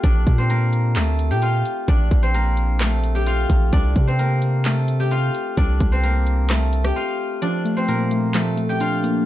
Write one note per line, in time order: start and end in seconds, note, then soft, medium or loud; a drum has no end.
0.00 0.26 A#1 loud
0.00 0.56 A3 medium
0.00 0.39 C4 medium
0.00 1.42 F4 medium
0.00 1.30 G4 medium
0.00 0.56 A4 medium
0.00 0.38 C5 medium
0.00 1.88 D5 loud
0.00 1.25 F5 medium
0.00 1.02 G5 medium
0.00 kick loud
0.00 closed hi-hat medium
0.04 1.89 D4 medium
0.27 0.97 A#2 loud
0.27 kick loud
0.27 closed hi-hat medium
0.38 2.23 C4 medium
0.38 2.22 C5 medium
0.50 1.02 A#3 medium
0.50 1.02 A#4 medium
0.50 closed hi-hat medium
0.73 closed hi-hat medium
0.95 1.32 D2 loud
0.95 2.40 A3 medium
0.95 2.40 A4 medium
0.95 clap loud
0.95 closed hi-hat medium
1.19 closed hi-hat medium
1.30 1.63 A#2 loud
1.30 3.15 G4 medium
1.30 2.87 G5 medium
1.42 3.26 F4 medium
1.42 3.10 F5 medium
1.42 closed hi-hat medium
1.65 closed hi-hat medium
1.88 2.10 A#1 loud
1.88 3.73 D4 medium
1.88 3.72 D5 loud
1.88 kick loud
1.88 closed hi-hat medium
2.11 3.46 A#1 loud
2.11 kick loud
2.11 closed hi-hat medium
2.23 4.08 C4 medium
2.23 4.07 C5 medium
2.34 2.86 A#3 medium
2.34 2.86 A#4 medium
2.34 closed hi-hat medium
2.57 closed hi-hat medium
2.80 4.25 A3 medium
2.80 4.25 A4 medium
2.80 cross-stick medium
2.80 clap loud
2.80 closed hi-hat medium
3.04 closed hi-hat medium
3.15 4.99 G4 medium
3.15 4.71 G5 medium
3.26 5.11 F4 medium
3.26 4.94 F5 medium
3.26 closed hi-hat medium
3.50 3.72 A#1 loud
3.50 kick medium
3.50 closed hi-hat medium
3.73 3.95 C2 loud
3.73 5.58 D4 medium
3.73 5.57 D5 loud
3.73 kick loud
3.73 closed hi-hat medium
3.96 5.30 C3 loud
3.96 kick medium
3.96 closed hi-hat medium
4.07 5.92 C4 medium
4.07 5.92 C5 medium
4.19 4.71 A#3 medium
4.19 4.71 A#4 medium
4.19 closed hi-hat medium
4.42 closed hi-hat medium
4.65 6.10 A3 medium
4.65 6.10 A4 medium
4.65 clap loud
4.65 closed hi-hat medium
4.88 closed hi-hat medium
5.00 6.84 G4 medium
5.00 6.56 G5 medium
5.11 6.96 F4 medium
5.11 6.79 F5 medium
5.11 closed hi-hat medium
5.35 closed hi-hat medium
5.57 5.80 C2 loud
5.57 7.42 D4 medium
5.57 7.41 D5 loud
5.57 kick loud
5.57 closed hi-hat medium
5.80 6.92 C2 loud
5.80 kick loud
5.80 closed hi-hat medium
5.92 7.77 C4 medium
5.92 7.76 C5 medium
6.04 6.56 A#3 medium
6.04 6.56 A#4 medium
6.04 closed hi-hat medium
6.26 closed hi-hat medium
6.49 7.94 A3 medium
6.49 7.94 A4 medium
6.49 cross-stick medium
6.49 clap loud
6.49 closed hi-hat medium
6.73 closed hi-hat medium
6.84 8.69 G4 medium
6.84 8.40 G5 medium
6.84 cross-stick medium
6.96 8.80 F4 medium
6.96 8.63 F5 medium
7.42 8.33 F3 medium
7.42 9.26 D4 medium
7.42 9.26 D5 loud
7.42 closed hi-hat medium
7.65 8.10 A3 medium
7.65 closed hi-hat medium
7.77 9.26 C4 medium
7.77 9.26 C5 medium
7.88 9.04 A#2 medium
7.88 8.40 A#3 medium
7.88 8.40 A#4 medium
7.88 closed hi-hat medium
8.11 8.56 A3 medium
8.11 closed hi-hat medium
8.34 9.25 F3 medium
8.34 9.26 A3 medium
8.34 9.26 A4 medium
8.34 clap loud
8.34 closed hi-hat medium
8.57 9.26 A3 medium
8.57 closed hi-hat medium
8.69 9.26 G4 medium
8.69 9.26 G5 medium
8.80 9.26 D4 medium
8.80 9.26 F4 medium
8.80 9.26 F5 medium
8.80 closed hi-hat medium
9.04 9.26 A#3 medium
9.04 closed hi-hat medium